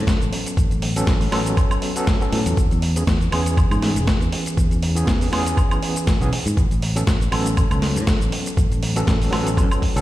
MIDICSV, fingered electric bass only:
0, 0, Header, 1, 3, 480
1, 0, Start_track
1, 0, Tempo, 500000
1, 552, Time_signature, 4, 2, 24, 8
1, 9612, End_track
2, 0, Start_track
2, 0, Title_t, "Fingered electric bass"
2, 0, Program_c, 0, 33
2, 204, Note_on_c, 0, 33, 83
2, 287, Note_off_c, 0, 33, 0
2, 549, Note_on_c, 0, 33, 104
2, 652, Note_off_c, 0, 33, 0
2, 682, Note_on_c, 0, 33, 82
2, 991, Note_off_c, 0, 33, 0
2, 1029, Note_on_c, 0, 33, 96
2, 1220, Note_off_c, 0, 33, 0
2, 1270, Note_on_c, 0, 33, 84
2, 1460, Note_off_c, 0, 33, 0
2, 2231, Note_on_c, 0, 45, 85
2, 2333, Note_off_c, 0, 45, 0
2, 2363, Note_on_c, 0, 40, 102
2, 2446, Note_off_c, 0, 40, 0
2, 2471, Note_on_c, 0, 40, 97
2, 2573, Note_off_c, 0, 40, 0
2, 2605, Note_on_c, 0, 40, 84
2, 2912, Note_off_c, 0, 40, 0
2, 2948, Note_on_c, 0, 40, 90
2, 3140, Note_off_c, 0, 40, 0
2, 3192, Note_on_c, 0, 40, 83
2, 3515, Note_off_c, 0, 40, 0
2, 3563, Note_on_c, 0, 44, 110
2, 3804, Note_on_c, 0, 28, 93
2, 3818, Note_off_c, 0, 44, 0
2, 3886, Note_off_c, 0, 28, 0
2, 4042, Note_on_c, 0, 40, 82
2, 4126, Note_off_c, 0, 40, 0
2, 4391, Note_on_c, 0, 40, 98
2, 4493, Note_off_c, 0, 40, 0
2, 4522, Note_on_c, 0, 40, 80
2, 4831, Note_off_c, 0, 40, 0
2, 4870, Note_on_c, 0, 40, 92
2, 5061, Note_off_c, 0, 40, 0
2, 5110, Note_on_c, 0, 40, 78
2, 5301, Note_off_c, 0, 40, 0
2, 5960, Note_on_c, 0, 35, 90
2, 6045, Note_off_c, 0, 35, 0
2, 6200, Note_on_c, 0, 44, 98
2, 6285, Note_off_c, 0, 44, 0
2, 6309, Note_on_c, 0, 33, 103
2, 6412, Note_off_c, 0, 33, 0
2, 6437, Note_on_c, 0, 33, 86
2, 6748, Note_off_c, 0, 33, 0
2, 6789, Note_on_c, 0, 33, 94
2, 6980, Note_off_c, 0, 33, 0
2, 7027, Note_on_c, 0, 33, 84
2, 7352, Note_off_c, 0, 33, 0
2, 7399, Note_on_c, 0, 37, 108
2, 7638, Note_on_c, 0, 45, 89
2, 7653, Note_off_c, 0, 37, 0
2, 7724, Note_off_c, 0, 45, 0
2, 7875, Note_on_c, 0, 33, 91
2, 7962, Note_off_c, 0, 33, 0
2, 8229, Note_on_c, 0, 33, 98
2, 8332, Note_off_c, 0, 33, 0
2, 8360, Note_on_c, 0, 33, 83
2, 8669, Note_off_c, 0, 33, 0
2, 8710, Note_on_c, 0, 33, 97
2, 8901, Note_off_c, 0, 33, 0
2, 8948, Note_on_c, 0, 33, 80
2, 9189, Note_on_c, 0, 42, 85
2, 9204, Note_off_c, 0, 33, 0
2, 9292, Note_off_c, 0, 42, 0
2, 9563, Note_on_c, 0, 37, 87
2, 9612, Note_off_c, 0, 37, 0
2, 9612, End_track
3, 0, Start_track
3, 0, Title_t, "Muted fingered electric bass strokes"
3, 6068, Note_on_c, 9, 29, 46
3, 6164, Note_off_c, 9, 29, 0
3, 9612, End_track
0, 0, End_of_file